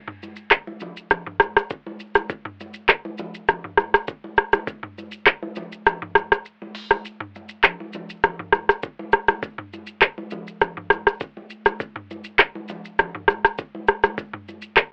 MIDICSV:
0, 0, Header, 1, 2, 480
1, 0, Start_track
1, 0, Tempo, 594059
1, 897, Time_signature, 4, 2, 24, 8
1, 12057, End_track
2, 0, Start_track
2, 0, Title_t, "Drums"
2, 61, Note_on_c, 9, 45, 93
2, 142, Note_off_c, 9, 45, 0
2, 182, Note_on_c, 9, 82, 49
2, 185, Note_on_c, 9, 63, 69
2, 263, Note_off_c, 9, 82, 0
2, 265, Note_off_c, 9, 63, 0
2, 291, Note_on_c, 9, 82, 81
2, 372, Note_off_c, 9, 82, 0
2, 410, Note_on_c, 9, 82, 68
2, 411, Note_on_c, 9, 37, 88
2, 411, Note_on_c, 9, 39, 88
2, 419, Note_on_c, 9, 36, 94
2, 491, Note_off_c, 9, 82, 0
2, 492, Note_off_c, 9, 37, 0
2, 492, Note_off_c, 9, 39, 0
2, 499, Note_off_c, 9, 36, 0
2, 544, Note_on_c, 9, 63, 88
2, 624, Note_off_c, 9, 63, 0
2, 647, Note_on_c, 9, 82, 54
2, 660, Note_on_c, 9, 63, 81
2, 660, Note_on_c, 9, 64, 79
2, 727, Note_off_c, 9, 82, 0
2, 741, Note_off_c, 9, 63, 0
2, 741, Note_off_c, 9, 64, 0
2, 782, Note_on_c, 9, 82, 82
2, 862, Note_off_c, 9, 82, 0
2, 895, Note_on_c, 9, 82, 76
2, 896, Note_on_c, 9, 36, 117
2, 896, Note_on_c, 9, 37, 93
2, 899, Note_on_c, 9, 64, 84
2, 976, Note_off_c, 9, 82, 0
2, 977, Note_off_c, 9, 36, 0
2, 977, Note_off_c, 9, 37, 0
2, 980, Note_off_c, 9, 64, 0
2, 1022, Note_on_c, 9, 45, 94
2, 1102, Note_off_c, 9, 45, 0
2, 1128, Note_on_c, 9, 37, 105
2, 1140, Note_on_c, 9, 63, 72
2, 1142, Note_on_c, 9, 82, 58
2, 1209, Note_off_c, 9, 37, 0
2, 1221, Note_off_c, 9, 63, 0
2, 1223, Note_off_c, 9, 82, 0
2, 1264, Note_on_c, 9, 37, 97
2, 1269, Note_on_c, 9, 82, 83
2, 1345, Note_off_c, 9, 37, 0
2, 1349, Note_off_c, 9, 82, 0
2, 1373, Note_on_c, 9, 82, 79
2, 1378, Note_on_c, 9, 36, 97
2, 1454, Note_off_c, 9, 82, 0
2, 1459, Note_off_c, 9, 36, 0
2, 1507, Note_on_c, 9, 63, 89
2, 1588, Note_off_c, 9, 63, 0
2, 1612, Note_on_c, 9, 82, 58
2, 1693, Note_off_c, 9, 82, 0
2, 1738, Note_on_c, 9, 82, 78
2, 1740, Note_on_c, 9, 37, 90
2, 1747, Note_on_c, 9, 63, 86
2, 1819, Note_off_c, 9, 82, 0
2, 1821, Note_off_c, 9, 37, 0
2, 1828, Note_off_c, 9, 63, 0
2, 1856, Note_on_c, 9, 36, 116
2, 1856, Note_on_c, 9, 82, 78
2, 1937, Note_off_c, 9, 36, 0
2, 1937, Note_off_c, 9, 82, 0
2, 1981, Note_on_c, 9, 45, 96
2, 2062, Note_off_c, 9, 45, 0
2, 2102, Note_on_c, 9, 82, 52
2, 2105, Note_on_c, 9, 63, 73
2, 2182, Note_off_c, 9, 82, 0
2, 2186, Note_off_c, 9, 63, 0
2, 2211, Note_on_c, 9, 82, 84
2, 2292, Note_off_c, 9, 82, 0
2, 2331, Note_on_c, 9, 82, 66
2, 2333, Note_on_c, 9, 37, 92
2, 2333, Note_on_c, 9, 39, 91
2, 2339, Note_on_c, 9, 36, 94
2, 2412, Note_off_c, 9, 82, 0
2, 2413, Note_off_c, 9, 37, 0
2, 2413, Note_off_c, 9, 39, 0
2, 2420, Note_off_c, 9, 36, 0
2, 2464, Note_on_c, 9, 63, 83
2, 2545, Note_off_c, 9, 63, 0
2, 2567, Note_on_c, 9, 82, 54
2, 2579, Note_on_c, 9, 63, 82
2, 2579, Note_on_c, 9, 64, 83
2, 2648, Note_off_c, 9, 82, 0
2, 2660, Note_off_c, 9, 63, 0
2, 2660, Note_off_c, 9, 64, 0
2, 2702, Note_on_c, 9, 82, 82
2, 2783, Note_off_c, 9, 82, 0
2, 2816, Note_on_c, 9, 82, 77
2, 2817, Note_on_c, 9, 36, 113
2, 2817, Note_on_c, 9, 37, 94
2, 2818, Note_on_c, 9, 64, 88
2, 2897, Note_off_c, 9, 36, 0
2, 2897, Note_off_c, 9, 82, 0
2, 2898, Note_off_c, 9, 37, 0
2, 2899, Note_off_c, 9, 64, 0
2, 2942, Note_on_c, 9, 45, 95
2, 3023, Note_off_c, 9, 45, 0
2, 3049, Note_on_c, 9, 37, 102
2, 3060, Note_on_c, 9, 63, 71
2, 3063, Note_on_c, 9, 82, 56
2, 3130, Note_off_c, 9, 37, 0
2, 3140, Note_off_c, 9, 63, 0
2, 3144, Note_off_c, 9, 82, 0
2, 3184, Note_on_c, 9, 37, 98
2, 3189, Note_on_c, 9, 82, 86
2, 3265, Note_off_c, 9, 37, 0
2, 3269, Note_off_c, 9, 82, 0
2, 3294, Note_on_c, 9, 82, 76
2, 3298, Note_on_c, 9, 36, 99
2, 3375, Note_off_c, 9, 82, 0
2, 3379, Note_off_c, 9, 36, 0
2, 3426, Note_on_c, 9, 63, 81
2, 3507, Note_off_c, 9, 63, 0
2, 3533, Note_on_c, 9, 82, 57
2, 3539, Note_on_c, 9, 37, 94
2, 3614, Note_off_c, 9, 82, 0
2, 3620, Note_off_c, 9, 37, 0
2, 3660, Note_on_c, 9, 82, 79
2, 3662, Note_on_c, 9, 37, 90
2, 3668, Note_on_c, 9, 63, 91
2, 3741, Note_off_c, 9, 82, 0
2, 3742, Note_off_c, 9, 37, 0
2, 3748, Note_off_c, 9, 63, 0
2, 3777, Note_on_c, 9, 36, 118
2, 3777, Note_on_c, 9, 82, 82
2, 3857, Note_off_c, 9, 36, 0
2, 3858, Note_off_c, 9, 82, 0
2, 3903, Note_on_c, 9, 45, 94
2, 3984, Note_off_c, 9, 45, 0
2, 4024, Note_on_c, 9, 82, 51
2, 4026, Note_on_c, 9, 63, 72
2, 4105, Note_off_c, 9, 82, 0
2, 4106, Note_off_c, 9, 63, 0
2, 4134, Note_on_c, 9, 82, 80
2, 4214, Note_off_c, 9, 82, 0
2, 4252, Note_on_c, 9, 82, 69
2, 4254, Note_on_c, 9, 37, 91
2, 4254, Note_on_c, 9, 39, 91
2, 4260, Note_on_c, 9, 36, 97
2, 4333, Note_off_c, 9, 82, 0
2, 4335, Note_off_c, 9, 37, 0
2, 4335, Note_off_c, 9, 39, 0
2, 4340, Note_off_c, 9, 36, 0
2, 4384, Note_on_c, 9, 63, 87
2, 4465, Note_off_c, 9, 63, 0
2, 4488, Note_on_c, 9, 82, 57
2, 4500, Note_on_c, 9, 63, 80
2, 4500, Note_on_c, 9, 64, 83
2, 4569, Note_off_c, 9, 82, 0
2, 4580, Note_off_c, 9, 63, 0
2, 4580, Note_off_c, 9, 64, 0
2, 4624, Note_on_c, 9, 82, 84
2, 4705, Note_off_c, 9, 82, 0
2, 4738, Note_on_c, 9, 82, 76
2, 4739, Note_on_c, 9, 37, 93
2, 4739, Note_on_c, 9, 64, 84
2, 4819, Note_off_c, 9, 82, 0
2, 4820, Note_off_c, 9, 37, 0
2, 4820, Note_off_c, 9, 64, 0
2, 4864, Note_on_c, 9, 45, 95
2, 4945, Note_off_c, 9, 45, 0
2, 4970, Note_on_c, 9, 37, 100
2, 4981, Note_on_c, 9, 63, 73
2, 4984, Note_on_c, 9, 82, 59
2, 5051, Note_off_c, 9, 37, 0
2, 5061, Note_off_c, 9, 63, 0
2, 5065, Note_off_c, 9, 82, 0
2, 5105, Note_on_c, 9, 37, 96
2, 5110, Note_on_c, 9, 82, 84
2, 5186, Note_off_c, 9, 37, 0
2, 5191, Note_off_c, 9, 82, 0
2, 5215, Note_on_c, 9, 82, 77
2, 5296, Note_off_c, 9, 82, 0
2, 5347, Note_on_c, 9, 63, 87
2, 5428, Note_off_c, 9, 63, 0
2, 5453, Note_on_c, 9, 46, 82
2, 5453, Note_on_c, 9, 82, 57
2, 5533, Note_off_c, 9, 46, 0
2, 5533, Note_off_c, 9, 82, 0
2, 5579, Note_on_c, 9, 82, 76
2, 5581, Note_on_c, 9, 37, 89
2, 5588, Note_on_c, 9, 63, 87
2, 5660, Note_off_c, 9, 82, 0
2, 5662, Note_off_c, 9, 37, 0
2, 5669, Note_off_c, 9, 63, 0
2, 5697, Note_on_c, 9, 82, 79
2, 5778, Note_off_c, 9, 82, 0
2, 5821, Note_on_c, 9, 45, 97
2, 5901, Note_off_c, 9, 45, 0
2, 5941, Note_on_c, 9, 82, 50
2, 5945, Note_on_c, 9, 63, 69
2, 6022, Note_off_c, 9, 82, 0
2, 6026, Note_off_c, 9, 63, 0
2, 6051, Note_on_c, 9, 82, 83
2, 6132, Note_off_c, 9, 82, 0
2, 6170, Note_on_c, 9, 82, 67
2, 6171, Note_on_c, 9, 37, 89
2, 6171, Note_on_c, 9, 39, 89
2, 6178, Note_on_c, 9, 64, 79
2, 6251, Note_off_c, 9, 82, 0
2, 6252, Note_off_c, 9, 37, 0
2, 6252, Note_off_c, 9, 39, 0
2, 6259, Note_off_c, 9, 64, 0
2, 6305, Note_on_c, 9, 63, 84
2, 6386, Note_off_c, 9, 63, 0
2, 6407, Note_on_c, 9, 82, 54
2, 6421, Note_on_c, 9, 63, 76
2, 6421, Note_on_c, 9, 64, 81
2, 6487, Note_off_c, 9, 82, 0
2, 6502, Note_off_c, 9, 63, 0
2, 6502, Note_off_c, 9, 64, 0
2, 6541, Note_on_c, 9, 82, 83
2, 6622, Note_off_c, 9, 82, 0
2, 6655, Note_on_c, 9, 82, 74
2, 6656, Note_on_c, 9, 36, 113
2, 6656, Note_on_c, 9, 37, 93
2, 6660, Note_on_c, 9, 64, 87
2, 6735, Note_off_c, 9, 82, 0
2, 6736, Note_off_c, 9, 37, 0
2, 6737, Note_off_c, 9, 36, 0
2, 6741, Note_off_c, 9, 64, 0
2, 6781, Note_on_c, 9, 45, 94
2, 6862, Note_off_c, 9, 45, 0
2, 6888, Note_on_c, 9, 37, 101
2, 6901, Note_on_c, 9, 63, 69
2, 6902, Note_on_c, 9, 82, 58
2, 6968, Note_off_c, 9, 37, 0
2, 6982, Note_off_c, 9, 63, 0
2, 6983, Note_off_c, 9, 82, 0
2, 7023, Note_on_c, 9, 37, 95
2, 7027, Note_on_c, 9, 82, 88
2, 7103, Note_off_c, 9, 37, 0
2, 7108, Note_off_c, 9, 82, 0
2, 7133, Note_on_c, 9, 82, 81
2, 7138, Note_on_c, 9, 36, 98
2, 7214, Note_off_c, 9, 82, 0
2, 7218, Note_off_c, 9, 36, 0
2, 7267, Note_on_c, 9, 63, 85
2, 7348, Note_off_c, 9, 63, 0
2, 7371, Note_on_c, 9, 82, 57
2, 7377, Note_on_c, 9, 37, 93
2, 7452, Note_off_c, 9, 82, 0
2, 7458, Note_off_c, 9, 37, 0
2, 7498, Note_on_c, 9, 82, 75
2, 7500, Note_on_c, 9, 37, 86
2, 7507, Note_on_c, 9, 63, 88
2, 7579, Note_off_c, 9, 82, 0
2, 7581, Note_off_c, 9, 37, 0
2, 7588, Note_off_c, 9, 63, 0
2, 7616, Note_on_c, 9, 36, 112
2, 7616, Note_on_c, 9, 82, 83
2, 7697, Note_off_c, 9, 36, 0
2, 7697, Note_off_c, 9, 82, 0
2, 7742, Note_on_c, 9, 45, 97
2, 7822, Note_off_c, 9, 45, 0
2, 7862, Note_on_c, 9, 82, 49
2, 7866, Note_on_c, 9, 63, 72
2, 7943, Note_off_c, 9, 82, 0
2, 7946, Note_off_c, 9, 63, 0
2, 7972, Note_on_c, 9, 82, 83
2, 8053, Note_off_c, 9, 82, 0
2, 8091, Note_on_c, 9, 82, 66
2, 8093, Note_on_c, 9, 37, 91
2, 8093, Note_on_c, 9, 39, 92
2, 8099, Note_on_c, 9, 36, 94
2, 8172, Note_off_c, 9, 82, 0
2, 8174, Note_off_c, 9, 37, 0
2, 8174, Note_off_c, 9, 39, 0
2, 8180, Note_off_c, 9, 36, 0
2, 8224, Note_on_c, 9, 63, 87
2, 8305, Note_off_c, 9, 63, 0
2, 8327, Note_on_c, 9, 82, 55
2, 8339, Note_on_c, 9, 63, 79
2, 8339, Note_on_c, 9, 64, 77
2, 8408, Note_off_c, 9, 82, 0
2, 8420, Note_off_c, 9, 63, 0
2, 8420, Note_off_c, 9, 64, 0
2, 8462, Note_on_c, 9, 82, 82
2, 8543, Note_off_c, 9, 82, 0
2, 8575, Note_on_c, 9, 82, 78
2, 8576, Note_on_c, 9, 36, 121
2, 8576, Note_on_c, 9, 37, 94
2, 8579, Note_on_c, 9, 64, 85
2, 8656, Note_off_c, 9, 82, 0
2, 8657, Note_off_c, 9, 36, 0
2, 8657, Note_off_c, 9, 37, 0
2, 8659, Note_off_c, 9, 64, 0
2, 8702, Note_on_c, 9, 45, 95
2, 8783, Note_off_c, 9, 45, 0
2, 8809, Note_on_c, 9, 37, 101
2, 8820, Note_on_c, 9, 63, 73
2, 8823, Note_on_c, 9, 82, 56
2, 8889, Note_off_c, 9, 37, 0
2, 8901, Note_off_c, 9, 63, 0
2, 8904, Note_off_c, 9, 82, 0
2, 8944, Note_on_c, 9, 37, 93
2, 8949, Note_on_c, 9, 82, 83
2, 9024, Note_off_c, 9, 37, 0
2, 9029, Note_off_c, 9, 82, 0
2, 9053, Note_on_c, 9, 82, 76
2, 9058, Note_on_c, 9, 36, 103
2, 9134, Note_off_c, 9, 82, 0
2, 9138, Note_off_c, 9, 36, 0
2, 9186, Note_on_c, 9, 63, 84
2, 9267, Note_off_c, 9, 63, 0
2, 9292, Note_on_c, 9, 82, 57
2, 9373, Note_off_c, 9, 82, 0
2, 9419, Note_on_c, 9, 82, 74
2, 9421, Note_on_c, 9, 37, 88
2, 9427, Note_on_c, 9, 63, 86
2, 9500, Note_off_c, 9, 82, 0
2, 9501, Note_off_c, 9, 37, 0
2, 9508, Note_off_c, 9, 63, 0
2, 9536, Note_on_c, 9, 36, 119
2, 9537, Note_on_c, 9, 82, 85
2, 9617, Note_off_c, 9, 36, 0
2, 9617, Note_off_c, 9, 82, 0
2, 9662, Note_on_c, 9, 45, 96
2, 9743, Note_off_c, 9, 45, 0
2, 9783, Note_on_c, 9, 82, 51
2, 9786, Note_on_c, 9, 63, 74
2, 9864, Note_off_c, 9, 82, 0
2, 9866, Note_off_c, 9, 63, 0
2, 9893, Note_on_c, 9, 82, 82
2, 9974, Note_off_c, 9, 82, 0
2, 10011, Note_on_c, 9, 82, 66
2, 10013, Note_on_c, 9, 37, 94
2, 10013, Note_on_c, 9, 39, 94
2, 10019, Note_on_c, 9, 36, 96
2, 10092, Note_off_c, 9, 82, 0
2, 10094, Note_off_c, 9, 37, 0
2, 10094, Note_off_c, 9, 39, 0
2, 10100, Note_off_c, 9, 36, 0
2, 10144, Note_on_c, 9, 63, 89
2, 10224, Note_off_c, 9, 63, 0
2, 10248, Note_on_c, 9, 82, 56
2, 10259, Note_on_c, 9, 63, 82
2, 10259, Note_on_c, 9, 64, 81
2, 10329, Note_off_c, 9, 82, 0
2, 10340, Note_off_c, 9, 63, 0
2, 10340, Note_off_c, 9, 64, 0
2, 10383, Note_on_c, 9, 82, 84
2, 10464, Note_off_c, 9, 82, 0
2, 10497, Note_on_c, 9, 36, 115
2, 10497, Note_on_c, 9, 82, 74
2, 10498, Note_on_c, 9, 37, 91
2, 10499, Note_on_c, 9, 64, 90
2, 10578, Note_off_c, 9, 36, 0
2, 10578, Note_off_c, 9, 82, 0
2, 10579, Note_off_c, 9, 37, 0
2, 10580, Note_off_c, 9, 64, 0
2, 10623, Note_on_c, 9, 45, 93
2, 10704, Note_off_c, 9, 45, 0
2, 10730, Note_on_c, 9, 37, 100
2, 10740, Note_on_c, 9, 63, 72
2, 10744, Note_on_c, 9, 82, 60
2, 10811, Note_off_c, 9, 37, 0
2, 10821, Note_off_c, 9, 63, 0
2, 10825, Note_off_c, 9, 82, 0
2, 10865, Note_on_c, 9, 37, 91
2, 10869, Note_on_c, 9, 82, 85
2, 10945, Note_off_c, 9, 37, 0
2, 10950, Note_off_c, 9, 82, 0
2, 10973, Note_on_c, 9, 82, 78
2, 10978, Note_on_c, 9, 36, 100
2, 11054, Note_off_c, 9, 82, 0
2, 11059, Note_off_c, 9, 36, 0
2, 11107, Note_on_c, 9, 63, 85
2, 11187, Note_off_c, 9, 63, 0
2, 11212, Note_on_c, 9, 82, 56
2, 11218, Note_on_c, 9, 37, 89
2, 11292, Note_off_c, 9, 82, 0
2, 11299, Note_off_c, 9, 37, 0
2, 11339, Note_on_c, 9, 82, 79
2, 11340, Note_on_c, 9, 37, 91
2, 11347, Note_on_c, 9, 63, 91
2, 11420, Note_off_c, 9, 82, 0
2, 11421, Note_off_c, 9, 37, 0
2, 11428, Note_off_c, 9, 63, 0
2, 11456, Note_on_c, 9, 36, 116
2, 11456, Note_on_c, 9, 82, 79
2, 11537, Note_off_c, 9, 36, 0
2, 11537, Note_off_c, 9, 82, 0
2, 11582, Note_on_c, 9, 45, 95
2, 11663, Note_off_c, 9, 45, 0
2, 11703, Note_on_c, 9, 82, 51
2, 11705, Note_on_c, 9, 63, 71
2, 11784, Note_off_c, 9, 82, 0
2, 11786, Note_off_c, 9, 63, 0
2, 11812, Note_on_c, 9, 82, 83
2, 11893, Note_off_c, 9, 82, 0
2, 11931, Note_on_c, 9, 82, 66
2, 11932, Note_on_c, 9, 37, 90
2, 11932, Note_on_c, 9, 39, 91
2, 11939, Note_on_c, 9, 36, 99
2, 12011, Note_off_c, 9, 82, 0
2, 12013, Note_off_c, 9, 37, 0
2, 12013, Note_off_c, 9, 39, 0
2, 12020, Note_off_c, 9, 36, 0
2, 12057, End_track
0, 0, End_of_file